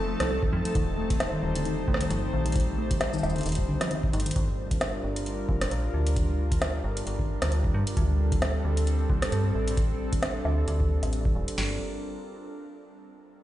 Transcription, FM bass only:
0.00 0.16 F1 medium
0.20 0.49 C2 medium
0.53 0.63 F2 loud
0.75 1.40 D#1 loud
1.43 1.85 D#1 medium
1.88 2.06 C2 medium
2.11 2.29 G1 loud
2.33 3.20 A#1 medium
3.23 3.42 D#1 medium
3.46 3.70 D#1 medium
3.68 3.78 C2 medium
4.13 4.32 G1 loud
4.36 5.00 G1 loud
5.04 5.45 G1 medium
5.49 5.67 F1 medium
5.71 5.90 A#1 medium
5.94 6.81 D2 medium
6.84 7.03 G1 medium
7.07 7.38 G1 medium
7.42 7.71 D2 medium
7.74 7.84 G2 loud
7.97 8.61 D2 loud
8.65 9.06 D2 medium
9.10 9.28 C2 medium
9.32 9.51 G2 loud
9.55 10.42 A1 medium
10.45 10.64 D2 medium
10.68 10.99 D2 medium
11.03 11.32 A1 medium
11.35 11.45 D1 loud
11.58 11.79 G1 medium

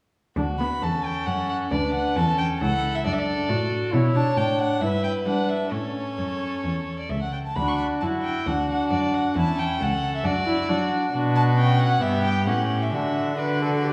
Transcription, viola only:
0.37 0.45 D4 soft
0.60 0.68 B3 soft
0.82 1.70 C#4 soft
1.72 2.18 D4 soft
2.17 2.63 C#4 soft
2.62 3.06 E4 soft
3.06 3.50 D4 medium
3.49 3.94 F#4 medium
3.93 4.17 E4 medium
4.16 4.36 D4 medium
4.37 4.84 D4 soft
4.82 5.27 E4 medium
5.28 5.73 D4 soft
5.72 7.36 C#4 soft
7.56 8.04 D4 soft
8.02 8.48 E4 soft
8.47 9.37 D4 soft
9.36 10.24 C#4 soft
10.24 10.32 D4 medium
10.46 10.71 E4 medium
10.69 11.12 D4 soft
11.13 11.54 D4 medium
11.57 12.02 C#4 medium
12.00 12.48 B3 medium
12.47 12.91 C#4 soft
12.92 13.37 D4 soft
13.37 13.63 B4 soft
13.62 13.83 A4 soft
13.84 13.93 G4 medium

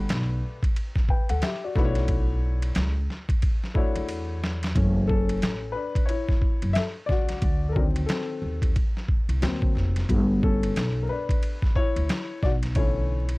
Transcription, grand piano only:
0.00 0.58 A3 medium
0.00 0.58 D4 medium
0.00 0.58 F#4 medium
0.00 0.59 G4 medium
0.00 0.59 B4 medium
1.10 1.29 B4 soft
1.10 1.29 G5 medium
1.30 1.42 A4 medium
1.30 1.42 F#5 medium
1.42 1.62 G4 medium
1.42 1.61 E5 medium
1.64 1.76 F#4 medium
1.64 1.95 D5 medium
1.75 2.92 A3 medium
1.75 2.92 D4 medium
1.75 2.92 E4 medium
1.75 2.93 F#4 medium
1.75 1.85 B4 medium
1.85 2.97 C#5 medium
3.74 4.63 A3 medium
3.74 4.64 D4 medium
3.74 4.64 E4 medium
3.74 4.65 F#4 medium
3.74 4.65 C#5 medium
4.75 5.22 E3 soft
4.75 5.23 A3 soft
4.75 5.09 C#4 medium
5.08 5.72 C#4 medium
5.08 5.77 A4 medium
5.72 6.07 D4 medium
5.72 6.08 B4 medium
6.06 6.72 E4 medium
6.06 6.76 C#5 medium
6.73 6.81 E5 loud
6.78 6.85 A4 medium
7.06 7.71 D5 medium
7.11 7.67 F#4 medium
7.69 7.75 A4 medium
7.69 7.80 A#4 medium
7.75 9.38 D#3 medium
7.75 9.38 F#3 medium
7.75 8.08 C4 medium
7.75 7.84 D4 medium
8.06 8.72 C4 medium
8.06 8.70 A4 medium
9.42 10.06 F#3 medium
9.42 10.06 A#3 soft
9.42 10.06 C4 medium
10.09 12.38 F#3 soft
10.09 12.39 A3 soft
10.09 12.39 B3 medium
10.44 11.00 C#4 medium
10.44 11.06 A4 medium
11.03 11.09 A#4 medium
11.09 11.73 D4 medium
11.09 11.78 B4 medium
11.76 12.39 E4 medium
11.76 12.39 C#5 loud
12.43 12.52 F#4 medium
12.43 12.51 D5 medium
12.76 13.23 D3 medium
12.76 13.23 E3 soft
12.76 13.23 A3 soft
12.76 13.24 C#4 medium
12.76 13.38 E4 medium
12.76 13.38 C#5 medium

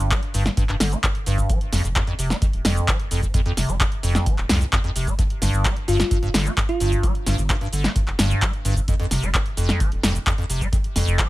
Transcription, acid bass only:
0.00 0.13 G2 loud
0.11 0.21 G3 medium
0.34 0.44 G2 loud
0.46 0.50 G2 medium
0.57 0.64 G2 loud
0.69 0.75 G2 loud
0.80 0.94 D3 medium
0.92 0.98 A#3 medium
1.03 1.07 G2 medium
1.26 1.51 G2 loud
1.50 1.59 F3 medium
1.73 1.82 F2 loud
1.84 1.88 F2 medium
1.96 2.02 F2 loud
2.07 2.14 F2 loud
2.19 2.32 C3 medium
2.30 2.37 G#3 medium
2.42 2.46 F2 medium
2.65 2.89 F2 loud
2.88 2.98 F3 medium
3.11 3.21 F2 loud
3.34 3.41 F2 loud
3.46 3.52 F2 loud
3.57 3.70 C3 medium
3.69 3.75 G#3 medium
3.80 3.84 F2 medium
4.03 4.28 F2 loud
4.26 4.36 F3 medium
4.49 4.59 F2 loud
4.61 4.65 F2 medium
4.73 4.79 F2 loud
4.84 4.90 F2 loud
4.96 5.09 C3 medium
5.07 5.14 G#3 medium
5.19 5.23 G2 medium
5.42 5.66 G2 loud
5.65 5.74 G3 medium
5.88 5.98 G2 loud
6.00 6.03 G2 medium
6.11 6.17 G2 loud
6.23 6.29 G2 loud
6.34 6.47 D3 medium
6.46 6.52 A#3 medium
6.57 6.61 G2 medium
6.80 7.05 G2 loud
7.03 7.13 G3 medium
7.27 7.36 G2 loud
7.38 7.42 G2 medium
7.50 7.56 G2 loud
7.61 7.68 G2 loud
7.73 7.86 D3 medium
7.84 7.91 A#3 medium
7.96 8.00 G2 medium
8.19 8.43 G2 loud
8.42 8.51 G3 medium
8.65 8.75 G2 loud
8.88 8.94 F2 loud
9.00 9.06 F2 loud
9.11 9.24 C3 medium
9.23 9.29 G#3 medium
9.34 9.38 F2 medium
9.57 9.82 F2 loud
9.80 9.90 F3 medium
10.03 10.13 F2 loud
10.15 10.19 F2 medium
10.26 10.33 F2 loud
10.38 10.44 F2 loud
10.50 10.63 C3 medium
10.61 10.67 G#3 medium
10.73 10.76 F2 medium
10.96 11.20 F2 loud
11.19 11.28 F3 medium

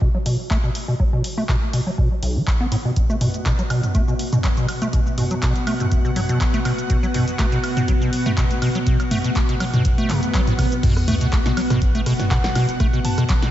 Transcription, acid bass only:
0.01 0.09 B2 medium
0.15 0.18 F#3 medium
0.26 0.37 B2 medium
0.50 0.58 A3 loud
0.64 0.70 B2 medium
0.88 0.95 B2 medium
1.00 1.04 F#3 medium
1.13 1.22 B2 medium
1.37 1.44 A3 loud
1.49 1.56 B2 medium
1.73 1.81 B2 medium
1.87 1.90 F#3 medium
1.98 2.09 B2 medium
2.23 2.37 B1 medium
2.36 2.42 F#3 medium
2.60 2.67 B3 loud
2.72 2.76 A2 loud
2.85 2.91 B2 medium
3.10 3.16 A3 loud
3.21 3.28 B2 medium
3.46 3.53 B2 medium
3.59 3.63 F#3 medium
3.70 3.81 B2 medium
3.95 4.02 A3 loud
4.08 4.14 B2 medium
4.33 4.39 B2 medium
4.44 4.48 F#3 medium
4.57 4.67 B2 medium
4.82 4.88 A3 medium
4.93 5.00 B2 medium
5.18 5.25 B2 medium
5.31 5.35 F#3 medium
5.42 5.53 B2 medium
5.67 5.74 A3 loud
5.80 5.86 B2 medium
6.05 6.11 B2 medium
6.16 6.20 F#3 medium
6.29 6.39 B2 medium
6.54 6.60 A3 loud
6.65 6.73 B2 medium
6.90 6.97 B2 medium
7.03 7.07 F#3 medium
7.14 7.25 B2 medium
7.39 7.46 A3 loud
7.52 7.59 B2 medium
7.77 7.83 B2 medium
7.88 7.93 F#3 medium
8.01 8.11 B2 medium
8.26 8.32 A3 loud
8.37 8.45 B2 medium
8.62 8.69 B2 medium
8.75 8.79 F#3 medium
8.87 8.98 B2 medium
9.11 9.18 A3 loud
9.24 9.31 B2 medium
9.49 9.55 B2 medium
9.60 9.65 F#3 medium
9.74 9.83 B2 medium
9.98 10.11 A3 loud
10.10 10.20 C3 medium
10.34 10.41 F#3 loud
10.47 10.54 A2 loud
10.59 10.66 C3 medium
10.83 10.94 B2 medium
11.08 11.15 A3 loud
11.21 11.27 B2 medium
11.46 11.52 B2 medium
11.57 11.61 F#3 medium
11.70 11.80 B2 medium
11.95 12.01 A3 loud
12.06 12.14 B2 medium
12.31 12.38 B2 medium
12.44 12.48 F#3 medium
12.56 12.66 B2 medium
12.80 12.87 A3 loud
12.93 13.00 B2 medium
13.18 13.24 B2 medium
13.29 13.34 F#3 medium
13.42 13.51 B2 medium

